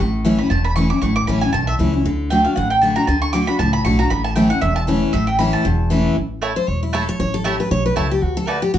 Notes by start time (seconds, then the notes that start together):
0.00 A1 A2 C#6
0.25 E3 A3 C#4 E4
0.39 C#4 E4 B5
0.50 E1 E2 A5
0.65 B5
0.76 E3 A3 C#4 E4 C#6
0.90 C#4 E4 D6
1.02 A1 A2 C#6
1.16 D6
1.27 A1 E3 A3 C#4 E4 B5
1.41 C#4 E4 G#5
1.53 B1 E2 A5
1.67 E5
1.79 C#2 E3 A3 C#4 E4
1.93 C#4 E4
2.04 D2 D3
2.30 D3 A3 D4 F#4 G5
2.44 D4 F#4 F5
2.56 A1 A2 F#5
2.70 G5
2.82 D3 A3 D4 F#4 A5
2.96 D4 F#4 A#5
3.07 D2 D3 A5
3.22 C#6
3.33 D3 A3 D4 F#4 D6
3.47 D4 F#4 B5
3.59 C#2 A2 A5
3.73 B5
3.85 B1 D3 A3 D4 F#4 C#6
3.99 D4 F#4 A#5
4.10 A1 A2 B5
4.24 A5
4.36 E3 A3 C#4 E4 G5
4.50 C#4 E4 F#5
4.61 E1 E2 E5
4.76 A5
4.87 E3 A3 C#4 E4
5.13 A1 A2 E5
5.27 G5
5.39 E3 A3 C#4 E4 B5
5.53 A5
5.65 E1 E2
5.90 E3 A3 C#4 E4
6.16 A1
6.42 A3 E4 C#5 A5
6.56 C5
6.68 E1 C#5
6.83 E4
6.93 A3 E4 A4 C#5 A5
7.09 C#5
7.19 A1 C#5
7.34 A4
7.44 A3 E4 G4 C#5 A5
7.60 B4
7.71 B1 C#5
7.86 B4
7.96 C#2 A3 E4 A4 C#5 A5
8.11 G4
8.22 D2 F#4
8.37 A4
8.47 A3 F#4 B4 D5 A5
8.62 G4
8.74 A1 F#4